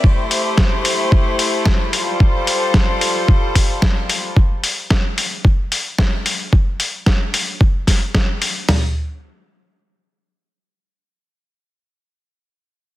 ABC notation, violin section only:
X:1
M:4/4
L:1/8
Q:"Swing 16ths" 1/4=111
K:Gmix
V:1 name="Violin section"
[A,EGc]6- [A,EGc] [G,FAc]- | [G,FAc]8 | z8 | z8 |
z8 | z8 |]